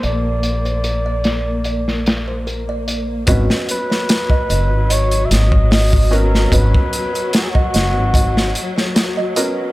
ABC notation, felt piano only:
X:1
M:4/4
L:1/8
Q:"Swing 16ths" 1/4=74
K:Abm
V:1 name="Felt piano"
z8 | [CDGc]6- [CDGc] [CDGB] | [CDGc]6- [CDGc] [CDGB] |]